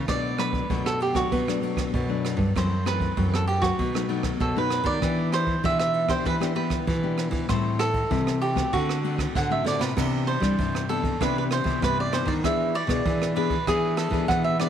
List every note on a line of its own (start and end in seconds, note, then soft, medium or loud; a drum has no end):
0.08 0.61 B2 medium
0.08 0.67 B2 soft
0.08 0.34 F#3 soft
0.08 0.34 A3 medium
0.08 0.35 D4 medium
0.08 0.40 D5 medium
0.08 kick medium
0.08 cross-stick medium
0.08 ride soft
0.38 0.65 F#3 medium
0.38 0.64 A3 soft
0.38 0.65 D4 medium
0.38 0.86 B4 medium
0.38 cross-stick medium
0.38 ride soft
0.53 kick medium
0.53 ride soft
0.69 1.29 F#2 medium
0.69 1.23 B2 medium
0.69 1.11 F#3 medium
0.69 1.11 A3 soft
0.69 1.12 D4 medium
0.69 kick medium
0.69 ride soft
0.86 1.02 A4 medium
0.86 cross-stick medium
1.00 1.17 G4 medium
1.00 ride soft
1.14 1.41 F#3 medium
1.14 1.41 A3 soft
1.14 1.42 D4 medium
1.14 2.05 F#4 medium
1.14 kick medium
1.14 cross-stick medium
1.14 ride soft
1.32 1.90 B2 medium
1.32 1.84 B3 medium
1.32 kick medium
1.32 ride soft
1.47 1.58 F#3 medium
1.47 1.58 A3 medium
1.47 1.58 D4 medium
1.47 cross-stick medium
1.61 2.03 F#3 soft
1.61 2.04 A3 medium
1.61 2.04 D4 medium
1.61 ride soft
1.77 kick medium
1.77 cross-stick medium
1.77 ride soft
1.94 2.52 F#2 medium
1.94 2.33 B2 medium
1.94 kick medium
1.94 ride soft
2.09 2.50 F#3 medium
2.09 2.51 A3 medium
2.09 2.51 D4 medium
2.25 cross-stick medium
2.25 ride soft
2.37 2.51 G2 medium
2.37 kick medium
2.37 ride soft
2.55 3.08 F#2 medium
2.55 3.14 F#2 soft
2.55 2.74 E3 medium
2.55 2.74 A3 soft
2.55 2.74 C4 medium
2.55 2.88 C5 medium
2.55 kick medium
2.55 cross-stick medium
2.55 ride soft
2.85 3.12 E3 medium
2.85 3.12 A3 medium
2.85 3.12 C4 medium
2.85 3.34 B4 medium
2.85 cross-stick medium
2.85 ride soft
3.00 kick medium
3.00 ride soft
3.17 3.70 F#2 medium
3.17 3.76 F#2 medium
3.17 3.46 E3 soft
3.17 3.46 A3 soft
3.17 3.47 C4 medium
3.17 kick medium
3.17 ride soft
3.34 3.47 A4 medium
3.34 cross-stick medium
3.48 3.62 G4 medium
3.48 ride soft
3.62 3.89 F#3 medium
3.62 3.89 A3 medium
3.62 3.89 D#4 medium
3.62 4.42 F#4 medium
3.62 kick medium
3.62 cross-stick medium
3.62 ride soft
3.79 4.38 B2 medium
3.79 4.32 B2 medium
3.79 kick medium
3.79 ride soft
3.94 4.05 F#3 medium
3.94 4.05 A3 medium
3.94 4.05 D#4 medium
3.94 cross-stick medium
4.08 4.38 F#3 soft
4.08 4.38 A3 medium
4.08 4.39 D#4 medium
4.08 ride soft
4.23 kick medium
4.23 cross-stick medium
4.23 ride soft
4.40 4.99 F#2 medium
4.40 4.80 B2 medium
4.40 4.57 A4 medium
4.40 kick medium
4.40 ride soft
4.56 4.98 F#3 medium
4.56 4.98 A3 medium
4.56 4.98 D#4 medium
4.56 4.89 B4 medium
4.70 cross-stick medium
4.70 ride soft
4.84 4.98 D#3 medium
4.84 5.30 D5 medium
4.84 kick medium
4.84 ride soft
5.02 5.61 E3 medium
5.02 5.55 E3 medium
5.02 5.42 B3 soft
5.02 5.42 D4 soft
5.02 5.42 G4 medium
5.02 kick medium
5.02 cross-stick medium
5.02 ride soft
5.32 5.62 C5 medium
5.32 cross-stick medium
5.32 ride soft
5.46 kick medium
5.46 ride soft
5.63 6.22 B2 medium
5.63 6.17 E3 medium
5.63 6.05 B3 medium
5.63 6.06 D4 soft
5.63 6.06 G4 medium
5.63 5.78 E5 loud
5.63 kick medium
5.63 ride soft
5.79 6.11 E5 medium
5.79 cross-stick medium
5.94 ride soft
6.08 6.35 B3 soft
6.08 6.35 D4 medium
6.08 6.36 G4 medium
6.08 6.26 C5 medium
6.08 kick medium
6.08 cross-stick medium
6.08 ride soft
6.24 6.84 E3 medium
6.24 6.78 E3 medium
6.24 6.35 B4 medium
6.24 kick medium
6.24 ride soft
6.40 6.51 B3 medium
6.40 6.52 D4 medium
6.40 6.52 G4 medium
6.40 cross-stick medium
6.55 6.85 B3 soft
6.55 6.85 D4 soft
6.55 6.85 G4 medium
6.55 7.14 B4 medium
6.55 ride soft
6.70 kick medium
6.70 cross-stick medium
6.70 ride soft
6.87 7.46 B2 medium
6.87 7.27 E3 medium
6.87 kick medium
6.87 ride soft
7.03 7.45 B3 medium
7.03 7.45 D4 medium
7.03 7.45 G4 medium
7.18 cross-stick medium
7.18 ride soft
7.31 7.45 E3 medium
7.31 kick medium
7.31 ride soft
7.48 8.08 A2 medium
7.48 8.02 A2 medium
7.48 7.89 G3 medium
7.48 7.89 C4 medium
7.48 7.89 E4 medium
7.48 7.81 C5 medium
7.48 kick medium
7.48 cross-stick medium
7.48 ride soft
7.79 8.41 A4 medium
7.79 cross-stick medium
7.79 ride soft
7.94 kick medium
7.94 ride soft
8.10 8.63 C3 medium
8.10 8.69 E3 soft
8.10 8.40 G3 medium
8.10 8.40 C4 medium
8.10 8.40 E4 medium
8.10 kick medium
8.10 ride soft
8.27 cross-stick medium
8.41 8.74 G4 medium
8.41 ride soft
8.55 8.98 A3 medium
8.55 8.98 C4 medium
8.55 8.98 F#4 medium
8.55 kick medium
8.55 cross-stick medium
8.55 ride soft
8.72 9.31 D3 medium
8.72 9.26 D3 loud
8.72 9.62 F#4 medium
8.72 kick medium
8.72 ride soft
8.89 cross-stick medium
9.03 9.33 A3 medium
9.03 9.33 C4 soft
9.03 9.33 F#4 medium
9.03 ride soft
9.18 kick medium
9.18 cross-stick medium
9.18 ride soft
9.35 9.94 A2 medium
9.35 9.61 D3 medium
9.35 9.51 F#5 medium
9.35 kick medium
9.35 snare soft
9.50 9.92 A3 medium
9.50 9.92 C4 medium
9.50 9.92 F#4 medium
9.50 9.65 E5 medium
9.65 9.79 D3 medium
9.65 9.81 D5 medium
9.65 snare medium
9.79 9.94 C3 medium
9.79 10.29 B4 medium
9.79 snare medium
9.97 10.36 C3 medium
9.97 10.55 C3 soft
9.97 10.38 E3 medium
9.97 10.38 B3 medium
9.97 10.39 D4 medium
9.97 kick medium
9.97 cross-stick medium
9.97 crash medium
10.27 10.85 C5 medium
10.27 ride soft
10.40 10.84 E3 medium
10.40 10.54 G3 medium
10.40 10.84 D4 medium
10.40 kick medium
10.40 cross-stick medium
10.40 ride soft
10.59 11.17 G2 soft
10.59 11.11 C3 medium
10.59 kick medium
10.59 ride soft
10.75 cross-stick medium
10.89 11.15 E3 soft
10.89 11.15 B3 medium
10.89 11.15 D4 medium
10.89 11.21 A4 medium
10.89 ride soft
11.04 kick medium
11.04 ride soft
11.20 11.79 C3 medium
11.20 11.60 C3 medium
11.20 11.62 E3 medium
11.20 11.62 B3 medium
11.20 11.62 D4 medium
11.20 11.37 B4 medium
11.20 kick medium
11.20 cross-stick medium
11.20 ride soft
11.38 11.43 B4 medium
11.51 11.83 C5 medium
11.51 cross-stick medium
11.51 ride soft
11.64 11.78 C3 medium
11.64 12.07 E3 medium
11.64 12.07 B3 medium
11.64 12.07 D4 medium
11.64 kick medium
11.64 ride soft
11.81 12.40 G2 medium
11.81 12.21 C3 medium
11.81 11.97 B4 medium
11.81 kick medium
11.81 cross-stick medium
11.81 ride soft
12.00 12.14 D5 medium
12.12 12.38 E3 medium
12.12 12.39 B3 medium
12.12 12.39 D4 medium
12.12 12.29 C5 medium
12.12 cross-stick medium
12.12 ride soft
12.25 12.44 D#3 medium
12.25 12.33 D5 medium
12.25 kick medium
12.25 ride soft
12.44 13.02 E3 medium
12.44 12.83 E3 medium
12.44 12.72 B3 medium
12.44 12.73 D4 medium
12.44 12.73 G#4 medium
12.44 12.76 E5 medium
12.44 kick medium
12.44 cross-stick medium
12.44 ride soft
12.74 13.36 D5 medium
12.74 ride soft
12.87 13.01 B2 medium
12.87 13.31 B3 medium
12.87 13.31 D4 medium
12.87 13.31 G#4 medium
12.87 kick medium
12.87 cross-stick medium
12.87 ride soft
13.05 13.64 B2 soft
13.05 13.58 E3 medium
13.05 kick medium
13.05 ride soft
13.22 cross-stick medium
13.35 13.54 B3 medium
13.35 13.54 D4 medium
13.35 13.54 G#4 medium
13.35 13.65 B4 medium
13.35 ride soft
13.50 kick medium
13.50 ride soft
13.67 14.26 E3 medium
13.67 14.06 E3 medium
13.67 14.09 B3 medium
13.67 14.08 D4 medium
13.67 13.97 G#4 medium
13.67 14.09 G#4 medium
13.67 kick medium
13.67 cross-stick medium
13.67 ride soft
13.97 14.29 A4 medium
13.97 cross-stick medium
13.97 ride soft
14.10 14.25 E3 medium
14.10 14.54 B3 medium
14.10 14.54 D4 medium
14.10 14.54 G#4 medium
14.10 kick medium
14.10 ride soft
14.28 14.69 B2 medium
14.28 14.68 E3 medium
14.28 14.44 F#5 medium
14.28 kick medium
14.28 cross-stick medium
14.28 ride soft
14.44 14.59 E5 medium
14.60 14.69 B3 medium
14.60 14.69 D4 medium
14.60 14.69 G#4 medium
14.60 14.69 D5 medium
14.60 cross-stick medium
14.60 ride soft